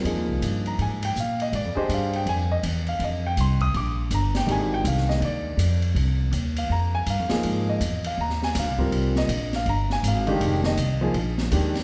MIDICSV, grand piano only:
0, 0, Header, 1, 2, 480
1, 0, Start_track
1, 0, Tempo, 369914
1, 67, Time_signature, 4, 2, 24, 8
1, 15360, End_track
2, 0, Start_track
2, 0, Title_t, "Grand piano"
2, 0, Program_c, 0, 0
2, 59, Note_on_c, 0, 53, 58
2, 59, Note_on_c, 0, 58, 51
2, 67, Note_on_c, 0, 63, 53
2, 67, Note_on_c, 0, 68, 62
2, 872, Note_on_c, 0, 82, 72
2, 1031, Note_off_c, 0, 82, 0
2, 1061, Note_on_c, 0, 80, 75
2, 1340, Note_off_c, 0, 80, 0
2, 1361, Note_on_c, 0, 79, 89
2, 1396, Note_off_c, 0, 53, 0
2, 1396, Note_off_c, 0, 58, 0
2, 1400, Note_off_c, 0, 63, 0
2, 1400, Note_off_c, 0, 68, 0
2, 1514, Note_off_c, 0, 79, 0
2, 1558, Note_on_c, 0, 77, 81
2, 1828, Note_off_c, 0, 77, 0
2, 1839, Note_on_c, 0, 75, 83
2, 1993, Note_off_c, 0, 75, 0
2, 2015, Note_on_c, 0, 74, 70
2, 2273, Note_on_c, 0, 68, 77
2, 2282, Note_on_c, 0, 62, 65
2, 2289, Note_on_c, 0, 67, 66
2, 2294, Note_on_c, 0, 72, 83
2, 2295, Note_off_c, 0, 74, 0
2, 2311, Note_on_c, 0, 75, 79
2, 2468, Note_off_c, 0, 75, 0
2, 2515, Note_on_c, 0, 77, 68
2, 2785, Note_off_c, 0, 77, 0
2, 2802, Note_on_c, 0, 79, 79
2, 2898, Note_off_c, 0, 68, 0
2, 2902, Note_off_c, 0, 62, 0
2, 2906, Note_off_c, 0, 67, 0
2, 2908, Note_off_c, 0, 72, 0
2, 2953, Note_off_c, 0, 79, 0
2, 2972, Note_on_c, 0, 80, 91
2, 3252, Note_off_c, 0, 80, 0
2, 3264, Note_on_c, 0, 75, 89
2, 3362, Note_off_c, 0, 75, 0
2, 3746, Note_on_c, 0, 77, 79
2, 3903, Note_off_c, 0, 77, 0
2, 3944, Note_on_c, 0, 75, 72
2, 4217, Note_off_c, 0, 75, 0
2, 4237, Note_on_c, 0, 79, 90
2, 4388, Note_off_c, 0, 79, 0
2, 4419, Note_on_c, 0, 84, 78
2, 4691, Note_on_c, 0, 87, 96
2, 4694, Note_off_c, 0, 84, 0
2, 4854, Note_off_c, 0, 87, 0
2, 4887, Note_on_c, 0, 86, 81
2, 5316, Note_off_c, 0, 86, 0
2, 5377, Note_on_c, 0, 82, 84
2, 5651, Note_off_c, 0, 82, 0
2, 5670, Note_on_c, 0, 79, 92
2, 5792, Note_on_c, 0, 51, 59
2, 5795, Note_on_c, 0, 56, 54
2, 5803, Note_on_c, 0, 62, 53
2, 5808, Note_on_c, 0, 67, 62
2, 5822, Note_off_c, 0, 79, 0
2, 5858, Note_on_c, 0, 80, 88
2, 6131, Note_off_c, 0, 80, 0
2, 6149, Note_on_c, 0, 79, 91
2, 6301, Note_off_c, 0, 79, 0
2, 6326, Note_on_c, 0, 77, 71
2, 6605, Note_off_c, 0, 77, 0
2, 6605, Note_on_c, 0, 75, 80
2, 6768, Note_off_c, 0, 75, 0
2, 6811, Note_on_c, 0, 74, 70
2, 7135, Note_off_c, 0, 51, 0
2, 7136, Note_off_c, 0, 56, 0
2, 7140, Note_off_c, 0, 62, 0
2, 7143, Note_off_c, 0, 67, 0
2, 7523, Note_off_c, 0, 74, 0
2, 8544, Note_on_c, 0, 77, 73
2, 8698, Note_off_c, 0, 77, 0
2, 8720, Note_on_c, 0, 82, 81
2, 9001, Note_off_c, 0, 82, 0
2, 9015, Note_on_c, 0, 80, 95
2, 9173, Note_off_c, 0, 80, 0
2, 9215, Note_on_c, 0, 77, 80
2, 9456, Note_on_c, 0, 53, 61
2, 9461, Note_on_c, 0, 58, 57
2, 9472, Note_on_c, 0, 63, 58
2, 9474, Note_on_c, 0, 68, 78
2, 9926, Note_off_c, 0, 77, 0
2, 9983, Note_on_c, 0, 75, 80
2, 10085, Note_off_c, 0, 53, 0
2, 10087, Note_off_c, 0, 58, 0
2, 10093, Note_off_c, 0, 63, 0
2, 10094, Note_off_c, 0, 68, 0
2, 10417, Note_off_c, 0, 75, 0
2, 10467, Note_on_c, 0, 77, 75
2, 10621, Note_off_c, 0, 77, 0
2, 10651, Note_on_c, 0, 82, 90
2, 10928, Note_off_c, 0, 82, 0
2, 10956, Note_on_c, 0, 80, 93
2, 11105, Note_off_c, 0, 80, 0
2, 11150, Note_on_c, 0, 77, 80
2, 11397, Note_on_c, 0, 55, 61
2, 11398, Note_on_c, 0, 60, 57
2, 11411, Note_on_c, 0, 65, 55
2, 11414, Note_on_c, 0, 70, 72
2, 11856, Note_off_c, 0, 77, 0
2, 11910, Note_on_c, 0, 75, 92
2, 12018, Note_off_c, 0, 55, 0
2, 12019, Note_off_c, 0, 60, 0
2, 12025, Note_off_c, 0, 65, 0
2, 12026, Note_off_c, 0, 70, 0
2, 12343, Note_off_c, 0, 75, 0
2, 12403, Note_on_c, 0, 77, 83
2, 12551, Note_off_c, 0, 77, 0
2, 12577, Note_on_c, 0, 82, 90
2, 12854, Note_off_c, 0, 82, 0
2, 12880, Note_on_c, 0, 80, 96
2, 13030, Note_off_c, 0, 80, 0
2, 13078, Note_on_c, 0, 77, 81
2, 13327, Note_on_c, 0, 51, 81
2, 13334, Note_on_c, 0, 56, 72
2, 13339, Note_on_c, 0, 62, 63
2, 13348, Note_on_c, 0, 67, 86
2, 13784, Note_off_c, 0, 77, 0
2, 13830, Note_on_c, 0, 75, 88
2, 13946, Note_off_c, 0, 51, 0
2, 13950, Note_off_c, 0, 56, 0
2, 13952, Note_off_c, 0, 62, 0
2, 13957, Note_off_c, 0, 67, 0
2, 14266, Note_off_c, 0, 75, 0
2, 14286, Note_on_c, 0, 53, 78
2, 14292, Note_on_c, 0, 58, 67
2, 14295, Note_on_c, 0, 63, 69
2, 14301, Note_on_c, 0, 68, 86
2, 14443, Note_off_c, 0, 53, 0
2, 14446, Note_off_c, 0, 58, 0
2, 14448, Note_off_c, 0, 63, 0
2, 14451, Note_off_c, 0, 68, 0
2, 14938, Note_on_c, 0, 51, 63
2, 14942, Note_on_c, 0, 56, 57
2, 14946, Note_on_c, 0, 62, 59
2, 14954, Note_on_c, 0, 67, 67
2, 15217, Note_off_c, 0, 51, 0
2, 15219, Note_off_c, 0, 56, 0
2, 15221, Note_off_c, 0, 62, 0
2, 15225, Note_off_c, 0, 67, 0
2, 15360, End_track
0, 0, End_of_file